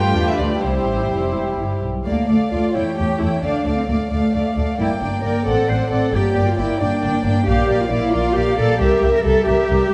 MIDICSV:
0, 0, Header, 1, 6, 480
1, 0, Start_track
1, 0, Key_signature, -1, "minor"
1, 0, Tempo, 477707
1, 628, Time_signature, 6, 3, 24, 8
1, 2072, Tempo, 456621
1, 4472, Tempo, 446761
1, 10482, End_track
2, 0, Start_track
2, 0, Title_t, "Violin section"
2, 0, Program_c, 0, 48
2, 0, Note_on_c, 0, 79, 70
2, 257, Note_off_c, 0, 79, 0
2, 274, Note_on_c, 0, 76, 56
2, 380, Note_on_c, 0, 74, 47
2, 390, Note_off_c, 0, 76, 0
2, 624, Note_off_c, 0, 74, 0
2, 635, Note_on_c, 0, 72, 50
2, 1358, Note_off_c, 0, 72, 0
2, 2060, Note_on_c, 0, 77, 38
2, 2302, Note_off_c, 0, 77, 0
2, 2315, Note_on_c, 0, 77, 36
2, 2538, Note_off_c, 0, 77, 0
2, 2550, Note_on_c, 0, 77, 32
2, 2786, Note_off_c, 0, 77, 0
2, 2788, Note_on_c, 0, 79, 40
2, 3013, Note_off_c, 0, 79, 0
2, 3025, Note_on_c, 0, 79, 38
2, 3256, Note_off_c, 0, 79, 0
2, 3268, Note_on_c, 0, 79, 35
2, 3504, Note_off_c, 0, 79, 0
2, 3516, Note_on_c, 0, 77, 39
2, 3745, Note_off_c, 0, 77, 0
2, 3758, Note_on_c, 0, 77, 35
2, 3989, Note_off_c, 0, 77, 0
2, 4006, Note_on_c, 0, 77, 32
2, 4229, Note_off_c, 0, 77, 0
2, 4242, Note_on_c, 0, 77, 42
2, 4464, Note_off_c, 0, 77, 0
2, 4477, Note_on_c, 0, 77, 35
2, 4697, Note_off_c, 0, 77, 0
2, 4709, Note_on_c, 0, 77, 35
2, 4947, Note_off_c, 0, 77, 0
2, 4961, Note_on_c, 0, 79, 43
2, 5179, Note_off_c, 0, 79, 0
2, 5192, Note_on_c, 0, 79, 36
2, 5423, Note_off_c, 0, 79, 0
2, 5436, Note_on_c, 0, 79, 35
2, 5670, Note_off_c, 0, 79, 0
2, 5684, Note_on_c, 0, 78, 43
2, 5909, Note_off_c, 0, 78, 0
2, 5922, Note_on_c, 0, 78, 38
2, 6140, Note_off_c, 0, 78, 0
2, 6152, Note_on_c, 0, 78, 37
2, 6392, Note_off_c, 0, 78, 0
2, 6395, Note_on_c, 0, 79, 48
2, 6634, Note_off_c, 0, 79, 0
2, 6647, Note_on_c, 0, 79, 42
2, 6869, Note_off_c, 0, 79, 0
2, 6882, Note_on_c, 0, 79, 40
2, 7111, Note_off_c, 0, 79, 0
2, 7124, Note_on_c, 0, 79, 45
2, 7349, Note_off_c, 0, 79, 0
2, 7362, Note_on_c, 0, 79, 42
2, 7589, Note_off_c, 0, 79, 0
2, 7602, Note_on_c, 0, 79, 43
2, 7834, Note_off_c, 0, 79, 0
2, 7838, Note_on_c, 0, 77, 53
2, 8071, Note_off_c, 0, 77, 0
2, 8092, Note_on_c, 0, 77, 45
2, 8314, Note_off_c, 0, 77, 0
2, 8327, Note_on_c, 0, 77, 44
2, 8553, Note_off_c, 0, 77, 0
2, 8564, Note_on_c, 0, 77, 53
2, 8791, Note_off_c, 0, 77, 0
2, 8808, Note_on_c, 0, 77, 53
2, 9032, Note_off_c, 0, 77, 0
2, 9044, Note_on_c, 0, 77, 51
2, 9265, Note_on_c, 0, 76, 58
2, 9273, Note_off_c, 0, 77, 0
2, 9486, Note_off_c, 0, 76, 0
2, 9499, Note_on_c, 0, 76, 48
2, 9711, Note_off_c, 0, 76, 0
2, 9724, Note_on_c, 0, 76, 50
2, 9954, Note_off_c, 0, 76, 0
2, 9967, Note_on_c, 0, 76, 61
2, 10214, Note_off_c, 0, 76, 0
2, 10226, Note_on_c, 0, 76, 54
2, 10445, Note_off_c, 0, 76, 0
2, 10482, End_track
3, 0, Start_track
3, 0, Title_t, "Violin section"
3, 0, Program_c, 1, 48
3, 0, Note_on_c, 1, 65, 52
3, 0, Note_on_c, 1, 71, 42
3, 616, Note_on_c, 1, 67, 35
3, 620, Note_on_c, 1, 72, 35
3, 622, Note_off_c, 1, 71, 0
3, 630, Note_off_c, 1, 65, 0
3, 1834, Note_off_c, 1, 67, 0
3, 1860, Note_off_c, 1, 72, 0
3, 2070, Note_on_c, 1, 74, 38
3, 2288, Note_off_c, 1, 74, 0
3, 2301, Note_on_c, 1, 74, 35
3, 2539, Note_off_c, 1, 74, 0
3, 2551, Note_on_c, 1, 74, 37
3, 2787, Note_off_c, 1, 74, 0
3, 2788, Note_on_c, 1, 73, 35
3, 3011, Note_off_c, 1, 73, 0
3, 3023, Note_on_c, 1, 73, 34
3, 3256, Note_off_c, 1, 73, 0
3, 3269, Note_on_c, 1, 73, 36
3, 3494, Note_on_c, 1, 74, 41
3, 3505, Note_off_c, 1, 73, 0
3, 3737, Note_off_c, 1, 74, 0
3, 3753, Note_on_c, 1, 74, 37
3, 3963, Note_off_c, 1, 74, 0
3, 3975, Note_on_c, 1, 74, 39
3, 4206, Note_off_c, 1, 74, 0
3, 4219, Note_on_c, 1, 74, 36
3, 4447, Note_off_c, 1, 74, 0
3, 4459, Note_on_c, 1, 74, 36
3, 4697, Note_off_c, 1, 74, 0
3, 4710, Note_on_c, 1, 74, 36
3, 4933, Note_off_c, 1, 74, 0
3, 4946, Note_on_c, 1, 74, 37
3, 5170, Note_off_c, 1, 74, 0
3, 5183, Note_on_c, 1, 74, 38
3, 5414, Note_off_c, 1, 74, 0
3, 5427, Note_on_c, 1, 74, 40
3, 5650, Note_off_c, 1, 74, 0
3, 5663, Note_on_c, 1, 74, 35
3, 5900, Note_off_c, 1, 74, 0
3, 5913, Note_on_c, 1, 74, 39
3, 6138, Note_off_c, 1, 74, 0
3, 6151, Note_on_c, 1, 74, 38
3, 6379, Note_off_c, 1, 74, 0
3, 6391, Note_on_c, 1, 74, 41
3, 6621, Note_off_c, 1, 74, 0
3, 6634, Note_on_c, 1, 74, 41
3, 6873, Note_off_c, 1, 74, 0
3, 6885, Note_on_c, 1, 74, 46
3, 7102, Note_off_c, 1, 74, 0
3, 7115, Note_on_c, 1, 74, 43
3, 7344, Note_off_c, 1, 74, 0
3, 7357, Note_on_c, 1, 74, 42
3, 7577, Note_off_c, 1, 74, 0
3, 7590, Note_on_c, 1, 74, 45
3, 7806, Note_off_c, 1, 74, 0
3, 7819, Note_on_c, 1, 74, 49
3, 8050, Note_off_c, 1, 74, 0
3, 8063, Note_on_c, 1, 74, 49
3, 8283, Note_off_c, 1, 74, 0
3, 8296, Note_on_c, 1, 74, 50
3, 8516, Note_off_c, 1, 74, 0
3, 8529, Note_on_c, 1, 74, 48
3, 8767, Note_off_c, 1, 74, 0
3, 8780, Note_on_c, 1, 74, 48
3, 9012, Note_off_c, 1, 74, 0
3, 9025, Note_on_c, 1, 74, 50
3, 9263, Note_off_c, 1, 74, 0
3, 9270, Note_on_c, 1, 70, 53
3, 9505, Note_off_c, 1, 70, 0
3, 9524, Note_on_c, 1, 70, 49
3, 9740, Note_off_c, 1, 70, 0
3, 9753, Note_on_c, 1, 70, 49
3, 9978, Note_off_c, 1, 70, 0
3, 9991, Note_on_c, 1, 70, 50
3, 10216, Note_off_c, 1, 70, 0
3, 10228, Note_on_c, 1, 70, 50
3, 10451, Note_off_c, 1, 70, 0
3, 10482, End_track
4, 0, Start_track
4, 0, Title_t, "Cello section"
4, 0, Program_c, 2, 48
4, 0, Note_on_c, 2, 67, 50
4, 613, Note_off_c, 2, 67, 0
4, 625, Note_on_c, 2, 64, 35
4, 1691, Note_off_c, 2, 64, 0
4, 2072, Note_on_c, 2, 58, 56
4, 2296, Note_off_c, 2, 58, 0
4, 2318, Note_on_c, 2, 57, 45
4, 2556, Note_off_c, 2, 57, 0
4, 2559, Note_on_c, 2, 65, 50
4, 2796, Note_off_c, 2, 65, 0
4, 2798, Note_on_c, 2, 64, 52
4, 3032, Note_on_c, 2, 67, 54
4, 3034, Note_off_c, 2, 64, 0
4, 3266, Note_off_c, 2, 67, 0
4, 3274, Note_on_c, 2, 64, 56
4, 3511, Note_on_c, 2, 62, 54
4, 3512, Note_off_c, 2, 64, 0
4, 3864, Note_off_c, 2, 62, 0
4, 3881, Note_on_c, 2, 60, 47
4, 3927, Note_off_c, 2, 60, 0
4, 3987, Note_on_c, 2, 58, 50
4, 4071, Note_off_c, 2, 58, 0
4, 4236, Note_on_c, 2, 57, 52
4, 4943, Note_off_c, 2, 57, 0
4, 4953, Note_on_c, 2, 64, 68
4, 5039, Note_off_c, 2, 64, 0
4, 5195, Note_on_c, 2, 62, 43
4, 5427, Note_off_c, 2, 62, 0
4, 5429, Note_on_c, 2, 70, 57
4, 5666, Note_off_c, 2, 70, 0
4, 5672, Note_on_c, 2, 69, 59
4, 5910, Note_off_c, 2, 69, 0
4, 5917, Note_on_c, 2, 72, 60
4, 6158, Note_off_c, 2, 72, 0
4, 6158, Note_on_c, 2, 69, 65
4, 6395, Note_off_c, 2, 69, 0
4, 6404, Note_on_c, 2, 67, 66
4, 6764, Note_off_c, 2, 67, 0
4, 6776, Note_on_c, 2, 65, 56
4, 6883, Note_on_c, 2, 64, 60
4, 6889, Note_off_c, 2, 65, 0
4, 7119, Note_on_c, 2, 62, 67
4, 7122, Note_off_c, 2, 64, 0
4, 7833, Note_on_c, 2, 67, 82
4, 7836, Note_off_c, 2, 62, 0
4, 8185, Note_off_c, 2, 67, 0
4, 8206, Note_on_c, 2, 65, 56
4, 8311, Note_on_c, 2, 64, 72
4, 8319, Note_off_c, 2, 65, 0
4, 8544, Note_off_c, 2, 64, 0
4, 8547, Note_on_c, 2, 65, 80
4, 8785, Note_on_c, 2, 67, 75
4, 8787, Note_off_c, 2, 65, 0
4, 9027, Note_off_c, 2, 67, 0
4, 9028, Note_on_c, 2, 69, 80
4, 9265, Note_off_c, 2, 69, 0
4, 9268, Note_on_c, 2, 67, 77
4, 9621, Note_off_c, 2, 67, 0
4, 9643, Note_on_c, 2, 70, 71
4, 9688, Note_off_c, 2, 70, 0
4, 9743, Note_on_c, 2, 69, 78
4, 9981, Note_off_c, 2, 69, 0
4, 9981, Note_on_c, 2, 67, 77
4, 10482, Note_off_c, 2, 67, 0
4, 10482, End_track
5, 0, Start_track
5, 0, Title_t, "Viola section"
5, 0, Program_c, 3, 48
5, 0, Note_on_c, 3, 57, 50
5, 0, Note_on_c, 3, 62, 41
5, 601, Note_off_c, 3, 57, 0
5, 615, Note_off_c, 3, 62, 0
5, 628, Note_on_c, 3, 55, 35
5, 632, Note_on_c, 3, 64, 34
5, 1840, Note_off_c, 3, 55, 0
5, 1866, Note_off_c, 3, 64, 0
5, 2080, Note_on_c, 3, 57, 36
5, 2305, Note_off_c, 3, 57, 0
5, 2318, Note_on_c, 3, 57, 36
5, 2551, Note_off_c, 3, 57, 0
5, 2562, Note_on_c, 3, 57, 34
5, 2793, Note_off_c, 3, 57, 0
5, 2805, Note_on_c, 3, 57, 32
5, 3016, Note_off_c, 3, 57, 0
5, 3028, Note_on_c, 3, 57, 35
5, 3258, Note_off_c, 3, 57, 0
5, 3271, Note_on_c, 3, 57, 33
5, 3499, Note_off_c, 3, 57, 0
5, 3511, Note_on_c, 3, 57, 35
5, 3738, Note_off_c, 3, 57, 0
5, 3750, Note_on_c, 3, 57, 33
5, 3985, Note_off_c, 3, 57, 0
5, 3996, Note_on_c, 3, 57, 34
5, 4229, Note_off_c, 3, 57, 0
5, 4242, Note_on_c, 3, 57, 35
5, 4473, Note_off_c, 3, 57, 0
5, 4489, Note_on_c, 3, 57, 38
5, 4711, Note_off_c, 3, 57, 0
5, 4724, Note_on_c, 3, 57, 32
5, 4954, Note_off_c, 3, 57, 0
5, 4961, Note_on_c, 3, 58, 41
5, 5175, Note_off_c, 3, 58, 0
5, 5187, Note_on_c, 3, 58, 38
5, 5412, Note_off_c, 3, 58, 0
5, 5425, Note_on_c, 3, 58, 36
5, 5664, Note_off_c, 3, 58, 0
5, 5664, Note_on_c, 3, 60, 39
5, 5897, Note_off_c, 3, 60, 0
5, 5910, Note_on_c, 3, 60, 36
5, 6136, Note_off_c, 3, 60, 0
5, 6149, Note_on_c, 3, 60, 34
5, 6390, Note_off_c, 3, 60, 0
5, 6396, Note_on_c, 3, 58, 39
5, 6625, Note_off_c, 3, 58, 0
5, 6638, Note_on_c, 3, 58, 40
5, 6859, Note_off_c, 3, 58, 0
5, 6872, Note_on_c, 3, 58, 42
5, 7111, Note_off_c, 3, 58, 0
5, 7125, Note_on_c, 3, 58, 44
5, 7338, Note_off_c, 3, 58, 0
5, 7351, Note_on_c, 3, 58, 42
5, 7576, Note_off_c, 3, 58, 0
5, 7589, Note_on_c, 3, 58, 44
5, 7820, Note_off_c, 3, 58, 0
5, 7833, Note_on_c, 3, 58, 46
5, 8052, Note_off_c, 3, 58, 0
5, 8065, Note_on_c, 3, 58, 48
5, 8299, Note_off_c, 3, 58, 0
5, 8312, Note_on_c, 3, 58, 44
5, 8531, Note_off_c, 3, 58, 0
5, 8544, Note_on_c, 3, 58, 47
5, 8762, Note_off_c, 3, 58, 0
5, 8775, Note_on_c, 3, 58, 52
5, 9009, Note_off_c, 3, 58, 0
5, 9021, Note_on_c, 3, 58, 44
5, 9254, Note_on_c, 3, 55, 56
5, 9261, Note_off_c, 3, 58, 0
5, 9482, Note_off_c, 3, 55, 0
5, 9495, Note_on_c, 3, 55, 52
5, 9727, Note_off_c, 3, 55, 0
5, 9740, Note_on_c, 3, 55, 49
5, 9968, Note_off_c, 3, 55, 0
5, 9980, Note_on_c, 3, 55, 52
5, 10208, Note_off_c, 3, 55, 0
5, 10221, Note_on_c, 3, 55, 50
5, 10446, Note_off_c, 3, 55, 0
5, 10482, End_track
6, 0, Start_track
6, 0, Title_t, "Double bass section"
6, 0, Program_c, 4, 48
6, 0, Note_on_c, 4, 43, 49
6, 150, Note_off_c, 4, 43, 0
6, 150, Note_on_c, 4, 40, 45
6, 230, Note_off_c, 4, 40, 0
6, 392, Note_on_c, 4, 38, 39
6, 472, Note_off_c, 4, 38, 0
6, 629, Note_on_c, 4, 36, 37
6, 866, Note_off_c, 4, 36, 0
6, 871, Note_on_c, 4, 33, 33
6, 1109, Note_off_c, 4, 33, 0
6, 1111, Note_on_c, 4, 29, 37
6, 1349, Note_off_c, 4, 29, 0
6, 1356, Note_on_c, 4, 28, 37
6, 1595, Note_off_c, 4, 28, 0
6, 1597, Note_on_c, 4, 31, 34
6, 1677, Note_off_c, 4, 31, 0
6, 1841, Note_on_c, 4, 35, 36
6, 2070, Note_off_c, 4, 35, 0
6, 2077, Note_on_c, 4, 38, 43
6, 2161, Note_off_c, 4, 38, 0
6, 2322, Note_on_c, 4, 38, 41
6, 2406, Note_off_c, 4, 38, 0
6, 2564, Note_on_c, 4, 38, 39
6, 2649, Note_off_c, 4, 38, 0
6, 2805, Note_on_c, 4, 40, 42
6, 2889, Note_off_c, 4, 40, 0
6, 3045, Note_on_c, 4, 40, 41
6, 3129, Note_off_c, 4, 40, 0
6, 3284, Note_on_c, 4, 40, 39
6, 3368, Note_off_c, 4, 40, 0
6, 3519, Note_on_c, 4, 38, 41
6, 3603, Note_off_c, 4, 38, 0
6, 3755, Note_on_c, 4, 38, 39
6, 3839, Note_off_c, 4, 38, 0
6, 3996, Note_on_c, 4, 38, 41
6, 4080, Note_off_c, 4, 38, 0
6, 4237, Note_on_c, 4, 38, 44
6, 4321, Note_off_c, 4, 38, 0
6, 4475, Note_on_c, 4, 38, 39
6, 4561, Note_off_c, 4, 38, 0
6, 4720, Note_on_c, 4, 38, 41
6, 4806, Note_off_c, 4, 38, 0
6, 4960, Note_on_c, 4, 31, 46
6, 5046, Note_off_c, 4, 31, 0
6, 5200, Note_on_c, 4, 31, 41
6, 5286, Note_off_c, 4, 31, 0
6, 5431, Note_on_c, 4, 31, 41
6, 5517, Note_off_c, 4, 31, 0
6, 5672, Note_on_c, 4, 33, 46
6, 5758, Note_off_c, 4, 33, 0
6, 5919, Note_on_c, 4, 33, 44
6, 6005, Note_off_c, 4, 33, 0
6, 6163, Note_on_c, 4, 33, 44
6, 6249, Note_off_c, 4, 33, 0
6, 6400, Note_on_c, 4, 31, 50
6, 6486, Note_off_c, 4, 31, 0
6, 6645, Note_on_c, 4, 31, 48
6, 6731, Note_off_c, 4, 31, 0
6, 6888, Note_on_c, 4, 31, 46
6, 6974, Note_off_c, 4, 31, 0
6, 7126, Note_on_c, 4, 31, 49
6, 7212, Note_off_c, 4, 31, 0
6, 7365, Note_on_c, 4, 31, 45
6, 7451, Note_off_c, 4, 31, 0
6, 7603, Note_on_c, 4, 31, 51
6, 7689, Note_off_c, 4, 31, 0
6, 7840, Note_on_c, 4, 34, 59
6, 7926, Note_off_c, 4, 34, 0
6, 8082, Note_on_c, 4, 34, 51
6, 8168, Note_off_c, 4, 34, 0
6, 8311, Note_on_c, 4, 34, 54
6, 8397, Note_off_c, 4, 34, 0
6, 8550, Note_on_c, 4, 34, 61
6, 8636, Note_off_c, 4, 34, 0
6, 8786, Note_on_c, 4, 34, 53
6, 8872, Note_off_c, 4, 34, 0
6, 9030, Note_on_c, 4, 34, 57
6, 9116, Note_off_c, 4, 34, 0
6, 9268, Note_on_c, 4, 36, 61
6, 9354, Note_off_c, 4, 36, 0
6, 9507, Note_on_c, 4, 36, 55
6, 9593, Note_off_c, 4, 36, 0
6, 9748, Note_on_c, 4, 36, 54
6, 9834, Note_off_c, 4, 36, 0
6, 9988, Note_on_c, 4, 36, 61
6, 10074, Note_off_c, 4, 36, 0
6, 10228, Note_on_c, 4, 36, 55
6, 10314, Note_off_c, 4, 36, 0
6, 10482, End_track
0, 0, End_of_file